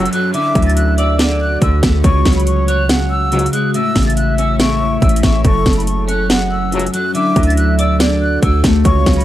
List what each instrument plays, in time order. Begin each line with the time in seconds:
Already playing: clean electric guitar F#2 C#4, ambient pad F#3 C#4 A4, flute E6, downlifter
0.06 closed hi-hat
0.13 clean electric guitar F#3, flute F#6, closed hi-hat
0.34 clean electric guitar D3, ambient pad D3 A3 F#4, soft synth lead E5, flute D6, closed hi-hat
0.55 808-style bass D2, clean electric guitar F#3, kick, closed hi-hat
0.62 flute A6, closed hi-hat
0.70 closed hi-hat
0.76 flute F#6, closed hi-hat
0.98 clean electric guitar D5, flute E6, closed hi-hat
1.19 clean electric guitar D3, soft synth lead D5, snare, closed hi-hat
1.41 flute F#6
1.62 808-style bass D2, clean electric guitar D3, flute E6, kick, closed hi-hat
1.83 808-style bass D2, clean electric guitar A3, kick, snare, closed hi-hat
2.04 808-style bass C#2, clean electric guitar C#3, ambient pad C#3 G#3, soft synth lead C#5, flute C#6, kick, closed hi-hat
2.25 808-style bass C#2, clean electric guitar F#3, kick, snare, closed hi-hat
2.33 flute B5, closed hi-hat
2.40 closed hi-hat
2.46 flute C#6, closed hi-hat
2.68 clean electric guitar C#5, flute F#6, closed hi-hat
2.89 clean electric guitar C#3, soft synth lead F#5, snare, closed hi-hat
3.10 flute E6
3.31 brass ensemble C#2 G#2 F#3, clean electric guitar C#3, closed hi-hat
3.39 closed hi-hat
3.46 closed hi-hat
3.53 clean electric guitar G#3, flute F#6, closed hi-hat
3.74 clean electric guitar A2, ambient pad A3 E4 C#5, soft synth lead E5, flute E6, closed hi-hat
3.95 808-style bass A1, clean electric guitar C#3, kick, snare, closed hi-hat, open hi-hat
4.03 closed hi-hat
4.07 flute A6, closed hi-hat
4.17 flute F#6, closed hi-hat
4.38 clean electric guitar C#4, flute E6, closed hi-hat
4.59 clean electric guitar A2, flute C#6, snare, closed hi-hat
5.01 808-style bass A1, clean electric guitar A2, flute E6, kick, closed hi-hat
5.09 closed hi-hat
5.16 closed hi-hat
5.23 808-style bass A1, clean electric guitar E3, flute C#6, kick, snare, closed hi-hat
5.45 808-style bass F#1, clean electric guitar F#2, ambient pad F#3 C#4 A4, soft synth lead A4, flute C#6, kick, closed hi-hat
5.66 808-style bass F#1, clean electric guitar C#3, kick, snare, closed hi-hat
5.73 closed hi-hat
5.77 flute B5, closed hi-hat
5.87 flute C#6, closed hi-hat
6.08 clean electric guitar C#4, flute F#6, closed hi-hat
6.30 clean electric guitar F#2, soft synth lead F#5, snare, closed hi-hat
6.51 flute E6
6.72 brass ensemble C#2 A2 F#3, clean electric guitar F#2, closed hi-hat
6.79 closed hi-hat
6.87 closed hi-hat
6.93 clean electric guitar F#3, flute F#6, closed hi-hat
7.14 clean electric guitar D3, ambient pad D3 A3 F#4, soft synth lead E5, flute D6, closed hi-hat
7.36 808-style bass D2, clean electric guitar F#3, kick, closed hi-hat
7.43 flute A6, closed hi-hat
7.50 closed hi-hat
7.57 flute F#6, closed hi-hat
7.79 clean electric guitar D5, flute E6, closed hi-hat
7.99 clean electric guitar D3, soft synth lead D5, snare, closed hi-hat
8.21 flute F#6
8.42 808-style bass D2, clean electric guitar D3, flute E6, kick, closed hi-hat
8.64 808-style bass D2, clean electric guitar A3, kick, snare, closed hi-hat
8.85 808-style bass C#2, clean electric guitar C#3, ambient pad C#3 G#3 F#4, soft synth lead C#5, flute C#6, kick, closed hi-hat
9.06 808-style bass C#2, clean electric guitar F#3, kick, snare, closed hi-hat
9.13 flute B5, closed hi-hat
9.21 closed hi-hat